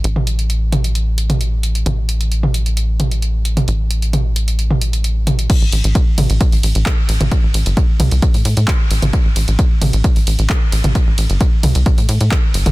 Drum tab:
CC |----------------|----------------|----------------|x---------------|
RD |----------------|----------------|----------------|--x---x---x---x-|
HH |x-xxx-xxx-xxx-xx|x-xxx-xxx-xxx-xx|x-xxx-xxx-xxx-xx|x-oxx-oxxooxx-ox|
CP |----------------|----------------|----------------|------------x---|
T2 |-o----o----o----|o----o----o----o|----o----o----o-|------o--------o|
BD |----------------|----------------|----------------|o---o---o---o---|

CC |----------------|----------------|----------------|
RD |--x---x---x---x-|--x---x---x---x-|--x---x---x---x-|
HH |x-oxx-oxxooxx-ox|x-oxx-oxxooxx-ox|x-oxx-oxxooxx-ox|
CP |------------x---|------------x---|------------x---|
T2 |------o--------o|------o--------o|------o--------o|
BD |o---o---o---o---|o---o---o---o---|o---o---o---o---|